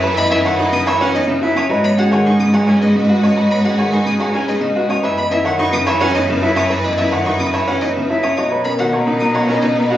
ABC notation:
X:1
M:3/4
L:1/16
Q:1/4=108
K:B
V:1 name="Violin"
z b e f z d' e f d z2 d' | z b f g c' d' f g d z2 d' | z b f g c' d' f g d z2 d' | e b e f c' d' e f d z2 d' |
e b e f c' d' e f d z2 d' | d' z b f z2 d' f a d z2 |]
V:2 name="Vibraphone"
e d B f b B b B c e c e | d c G f g G g G B d B d | d c G f g G g G B d B d | e d B f b B b B c e c e |
e d B f b B b B c e c e | d c A f a A a A B d B d |]
V:3 name="Violin section"
[EB]8- [EB]3 z | [FB]12- | [FB]8- [FB]3 z | [EB]12- |
[EB]8- [EB]3 z | [DB]12 |]
V:4 name="Grand piano"
B z E c D z c C D z E c | B z F c D z c C D z F c | B z F c D z c C D z F c | B z E c D z c C D z E c |
B z E c D z c C D z E c | c B z F c D z c C D z F |]
V:5 name="Grand piano" clef=bass
E, B, C D, F, C, E, F, B, C, F, C | F, B, C D, G, C, F, G, B, C, G, C | F, B, C D, G, C, F, G, B, C, G, C | E, B, C D, F, C, E, F, B, C, F, C |
E, B, C D, F, C, E, F, B, C, F, C | F, B, C D, A, C, F, A, B, C, A, C |]
V:6 name="Cello" clef=bass
F,,12 | G,,12- | G,,12 | F,,12- |
F,,12 | B,,12 |]